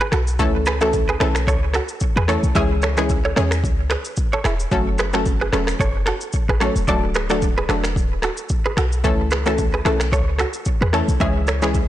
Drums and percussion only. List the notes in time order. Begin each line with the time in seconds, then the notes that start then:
0.12 finger snap, cross-stick, shaker
0.27 shaker
0.39 kick, shaker
0.66 finger snap, cross-stick, shaker
0.81 finger snap, cross-stick, shaker
0.93 kick, shaker
1.20 finger snap, cross-stick, shaker
1.35 finger snap, cross-stick, shaker
1.47 kick, shaker
1.73 finger snap, cross-stick, shaker
1.88 shaker
2.00 kick, shaker
2.28 finger snap, cross-stick, shaker
2.44 shaker
2.55 kick, shaker
2.82 finger snap, cross-stick, shaker
2.97 finger snap, cross-stick, shaker
3.09 kick, shaker
3.36 finger snap, cross-stick, shaker
3.51 finger snap, cross-stick, shaker
3.64 kick, shaker
3.90 finger snap, cross-stick, shaker
4.05 shaker
4.17 kick, shaker
4.44 finger snap, cross-stick, shaker
4.60 shaker
4.72 kick, shaker
4.98 finger snap, cross-stick, shaker
5.13 finger snap, cross-stick, shaker
5.26 kick, shaker
5.53 finger snap, cross-stick, shaker
5.67 finger snap, cross-stick, shaker
5.80 kick, shaker
6.06 finger snap, cross-stick, shaker
6.21 shaker
6.33 kick, shaker
6.60 finger snap, cross-stick, shaker
6.76 shaker
6.88 kick, shaker
7.14 finger snap, cross-stick, shaker
7.30 finger snap, cross-stick, shaker
7.42 kick, shaker
7.69 finger snap, cross-stick, shaker
7.84 finger snap, cross-stick, shaker
7.96 kick, shaker
8.22 finger snap, cross-stick, shaker
8.37 shaker
8.49 kick, shaker
8.77 finger snap, cross-stick, shaker
8.92 shaker
9.04 kick, shaker
9.31 finger snap, cross-stick, shaker
9.46 finger snap, cross-stick, shaker
9.58 kick, shaker
9.85 finger snap, cross-stick, shaker
10.00 finger snap, cross-stick, shaker
10.12 kick, shaker
10.38 finger snap, cross-stick, shaker
10.53 shaker
10.65 kick, shaker
10.93 finger snap, cross-stick, shaker
11.09 shaker
11.20 kick, shaker
11.47 finger snap, cross-stick, shaker
11.62 finger snap, cross-stick, shaker
11.74 kick, shaker